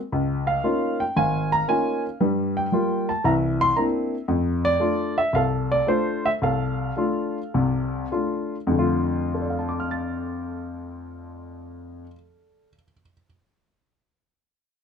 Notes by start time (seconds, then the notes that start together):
0.12 C#2
0.47 F5
0.64 A#3 C#4 D#4 F4
1.00 G5
1.16 G#1 F5 G#5
1.52 A#5
1.68 A#3 C#4 D#4 F4 G#5
2.21 G2 G3
2.57 G5
2.72 G3 A#3 F4
3.09 A5
3.24 C2 E3 E5 A#5
3.61 C6
3.77 A#3 C4 D4 E4 A#5
4.28 F2
4.65 D5
4.80 A3 D4 F4
5.18 E5
5.33 C2 A4 F5
5.72 D5
5.87 A3 D4 F4 C5
6.26 E5
6.42 C2 A4 F5
6.97 A3 D4 F4
7.54 C2 C3
8.12 A3 D4 F4
8.67 F2 D3
8.74 A3
8.79 F4
9.34 A4
9.42 D5
9.50 F5
9.59 A5
9.69 D6
9.80 F6
9.91 A6